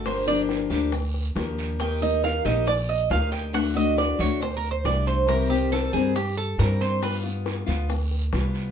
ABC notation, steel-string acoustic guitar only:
X:1
M:4/4
L:1/8
Q:1/4=138
K:Gm
V:1 name="Steel-string acoustic guitar"
[D,F,B,DG] [F,B,DG]2 [F,B,DG] z2 [F,B,DG]2 | [E,B,EG] [B,EG]2 [B,EG] z2 [B,EG]2 | [D,A,D^F] [A,DF]2 [A,DF] z2 [D,A,DF]2 | [C,E,G,CG] [E,G,CG]2 [E,G,CG] z2 [E,G,CG]2 |
[G,=B,F] [B,F]2 [B,F] z2 [G,B,F]2 |]